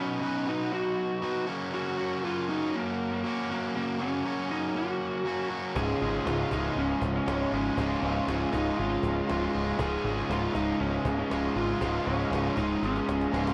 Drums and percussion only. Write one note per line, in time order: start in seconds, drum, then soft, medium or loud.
5.76 cajon bass loud
6.27 cajon slap loud
6.51 cajon bass medium
7.02 cajon bass loud
7.28 cajon slap loud
7.77 cajon bass loud
8.28 cajon slap loud
8.53 cajon bass medium
9.03 cajon bass loud
9.29 cajon slap loud
9.79 cajon bass loud
10.31 cajon slap loud
10.55 cajon bass medium
11.05 cajon bass loud
11.31 cajon slap loud
11.81 cajon bass loud
12.33 cajon slap loud
12.57 cajon bass medium
12.83 cajon slap medium
12.96 cajon slap medium
13.09 cajon slap loud
13.21 cajon slap medium
13.34 cajon slap medium
13.47 cajon slap loud